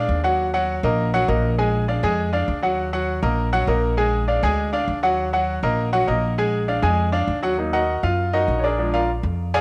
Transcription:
Already playing: D4 D5 F5
0.08 D#2
0.24 F#3 F#4 F#5
0.54 F#3 F#4 F#5
0.83 A#1 A#3 A#4 D#5
1.14 F#3 F#4 F#5
1.28 A#1 A#3 A#4 D#5
1.58 G#3 G#4 G#5
1.88 D4 D5 F5
2.03 F2 G#3 G#4 G#5
2.33 D4 D5 F5
2.48 D#2
2.63 F#3 F#4 F#5
2.93 F#3 F#4 F#5
3.22 A#1 A#3 A#4 D#5
3.53 F#3 F#4 F#5
3.67 A#1 A#3 A#4 D#5
3.97 G#3 G#4 G#5
4.28 D4 D5 F5
4.43 D2 G#3 G#4 G#5
4.73 D4 D5 F5
4.88 D#2
5.03 F#3 F#4 F#5
5.33 F#3 F#4 F#5
5.63 A#1 A#3 A#4 D#5
5.93 F#3 F#4 F#5
6.07 A#1 A#3 A#4 D#5
6.38 G#3 G#4 G#5
6.68 D4 D5 F5
6.82 F2 G#3 G#4 G#5
7.12 D4 D5 F5
7.27 D#2
7.42 F#3 F#4 F#5
7.57 F#3 A#3 D#4
7.73 F#4 A#4 D#5 F#5
8.03 F#2 F4 F5
8.33 D#4 F#4 A#4 D#5
8.48 A#1
8.59 C#5
8.64 D4 G#4 A#4 D5
8.78 F3 G#3 D4
8.94 F4 A#4 D5 F5
9.23 F2
9.54 G#4 D5 F5 G#5

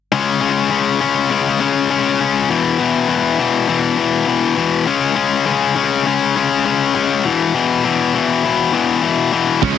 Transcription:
0.12 C#3 G#3 C#4
0.41 C#3 G#3 C#4
0.70 C#3 G#3 C#4
1.01 C#3 G#3 C#4
1.30 C#3 G#3 C#4
1.60 C#3 G#3 C#4
1.90 C#3 G#3 C#4
2.21 C#3 G#3 C#4
2.49 E2 B2 E3
2.79 E2 B2 E3
3.08 E2 B2 E3
3.39 E2 B2 E3
3.68 E2 B2 E3
3.98 E2 B2 E3
4.27 E2 B2 E3
4.56 E2 B2 E3
4.86 C#3 G#3 C#4
5.16 C#3 G#3 C#4
5.46 C#3 G#3 C#4
5.76 C#3 G#3 C#4
6.06 C#3 G#3 C#4
6.36 C#3 G#3 C#4
6.65 C#3 G#3 C#4
6.95 C#3 G#3 C#4
7.25 E2 B2 E3
7.55 E2 B2 E3
7.84 E2 B2 E3
8.14 E2 B2 E3
8.44 E2 B2 E3
8.73 E2 B2 E3
9.02 E2 B2 E3
9.32 E2 B2 E3
9.62 C#2 C#3 G#3 C#4, kick, open hi-hat

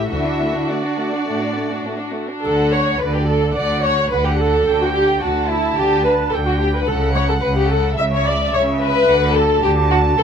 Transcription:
Already playing: E4 G4
0.11 D2 D3 A3 E4 F#4 E5
0.26 D4
0.42 A3
0.56 D4
0.70 A3 D4 D5
0.85 D4
0.99 A3
1.15 D4
1.28 A2 A3
1.43 D4
1.57 A3
1.73 D4
1.88 A3
2.01 D4
2.17 A3
2.31 D4
2.44 D2 D3 A4 F#5
2.73 C#5
3.00 D2 D3 B4 D5
3.16 G4
3.28 A4
3.55 D2 D3 D5 F#5
3.84 C#5
4.11 D2 D3 B4 F#5
4.26 G4
4.40 A4
4.67 D2 D3 G5
4.82 F#4
4.96 G4
5.22 D2 D3 F#4 A5
5.50 E4
5.77 D2 D3 G4
6.05 B4
6.31 D2 D3 A4 G5
6.46 F#4
6.60 G4
6.73 B4
6.87 C#2 C#3 A4 F#5
7.14 C#5
7.28 A4
7.41 C#2 C#3 B4
7.56 G4
7.70 A4
7.98 C#2 C#3 E5
8.12 C#5
8.26 D5
8.54 C#2 C#3 C#5
8.81 B4
9.08 D2 D3 F#5
9.35 A4 A5
9.63 D2 D3 G4
9.90 F#4
10.18 D2 D3 A4

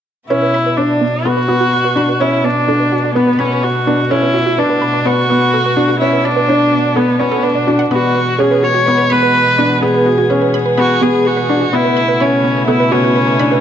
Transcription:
0.29 B2 D3 A3 B3 C#4 E4 F#4 B4
0.42 B4
0.54 B5
0.66 B4
0.77 D4 C#5
1.01 B3
1.25 B3 F#4 A4
1.37 B4
1.48 B3 F#4
1.61 F#4
1.73 B4
1.85 B4
1.96 D4 B5
2.09 B4
2.20 C#4 E4 C#5
2.44 B3 D4
2.68 D4 A4
2.80 B4
2.92 F#4
3.04 F#4
3.15 B3 B4
3.27 B4
3.39 B3 C#4 B5
3.51 B4
3.62 F#4 C#5
3.87 B3 D4
4.11 C#4 E4 A4
4.22 B4
4.34 F#4
4.46 F#4
4.58 D4 B4
4.70 B4
4.82 B5
4.94 B4
5.05 B3 F#4 C#5
5.30 B3
5.54 A4
5.66 B4
5.77 D4 F#4
5.89 F#4
6.00 C#4 E4 B4
6.13 B4
6.25 D4 B5
6.36 B4
6.49 D4 C#5
6.72 B3
6.96 B3 A4
7.08 B4
7.19 B3 C#4 D5
7.32 A4
7.43 D4 B4
7.55 D5
7.67 D4 F#4
7.79 F#5
7.91 B2 E3 G#3 B3 F#4 B5
8.15 B3
8.39 C#4 G#4
8.51 B4
8.63 F#4 C#5
8.74 F#4
8.86 B3 B4
8.98 B4
9.10 B3 B4 B5
9.23 B4
9.35 B5
9.58 B3 D4
9.81 B3 G#4
9.94 B4
10.06 F#4
10.18 F#4
10.30 C#4 B4
10.42 B4
10.54 B5
10.66 B4
10.78 B3 F#4 B5
11.02 B3 G#4
11.25 F#4 G#4
11.37 B4
11.49 D4 F#4
11.61 F#4
11.72 B2 C#3 A3 B3 E4 B4
11.85 B4
11.97 B5
12.08 B4
12.20 C#4 B5
12.44 B3
12.68 B3 E4 A4
12.80 B4
12.91 B3 C#4 F#4
13.04 F#4
13.16 B4
13.28 B4
13.39 D4 B5
13.51 B4

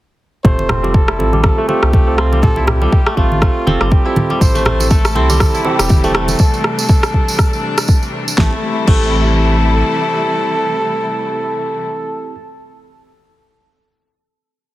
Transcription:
0.44 F1 A3 C4 F4 G4 A4 C5, kick, low conga
0.59 muted conga
0.69 C4, cross-stick, low conga
0.83 G3 C4 F4 G4 A4, muted conga
0.94 A4, kick
1.08 E4, cross-stick
1.19 A1 C4 F4 G4 A4, muted conga
1.33 G3, high conga
1.43 C4 F4 G4 A4, kick, cross-stick, muted conga, high conga
1.58 A3
1.68 A3 C4 F4 G4 A4, muted conga
1.83 C2, cross-stick
1.93 A3, kick, muted conga, high conga
2.07 C4 F4 G4 A4
2.18 C4 F4, cross-stick
2.32 G3, muted conga
2.42 C4 F4 G4 A4, kick, low conga
2.56 E4, muted conga
2.67 G4, cross-stick, low conga
2.82 G3 C4 F4 G4 A4, muted conga
2.92 kick
3.06 A3, cross-stick
3.16 A1 A3 C4 F4 G4 A4, kick, muted conga
3.32 high conga
3.42 A3 C4 F4 G4 A4, kick, cross-stick, muted conga
3.67 F1 C4 F4 G4 A4, muted conga, high conga
3.81 G1 G3, cross-stick
3.91 G4, kick, muted conga
4.05 C4 E4 F4 G4 A4
4.16 high conga, low conga
4.30 G3, muted conga
4.40 A1 C3 E3 G3 A3 C4 E4 G4 A4 C5, kick, tambourine, low conga
4.55 A3, tambourine, muted conga
4.65 A3, cross-stick, low conga
4.80 C4 E4 G4 A4, tambourine, muted conga
4.90 A3 A4, kick, tambourine
5.05 cross-stick, tambourine
5.15 C2 C4 E4 G4 A4, muted conga
5.29 G3, tambourine, high conga
5.39 C4 E4 G4 A4, kick, cross-stick, tambourine, muted conga, high conga
5.54 E4, tambourine
5.64 C4 E4 G4 A4, muted conga
5.79 E1 G3, cross-stick, tambourine
5.89 kick, tambourine, muted conga, high conga
6.04 A3 C4 E4 G4 A4, tambourine
6.14 A3 A4, cross-stick
6.28 tambourine, muted conga
6.39 D4, kick, tambourine
6.54 tambourine
6.64 cross-stick
6.79 tambourine
6.89 kick, tambourine
7.03 cross-stick, tambourine
7.14 kick
7.28 tambourine
7.39 kick, cross-stick, tambourine
7.53 tambourine
7.78 cross-stick, tambourine
7.88 kick, tambourine
8.03 tambourine
8.28 tambourine
8.38 A1 C3 E3 G3 A3 C4 E4 G4 A4, kick, snare
8.87 A1 A3 C4 E4 G4 A4, kick, crash

